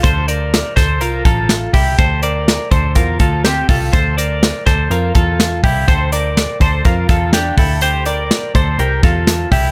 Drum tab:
HH |xxxxxxxo|xxxxxxxo|xxxxxxxo|xxxxxxxo|
SD |--oo--o-|--o---o-|--oo--o-|--o---o-|
BD |o--o-o-o|o--ooo-o|o--o-o-o|o--ooo-o|

HH |xxxxxxxo|
SD |--o---o-|
BD |---o-o-o|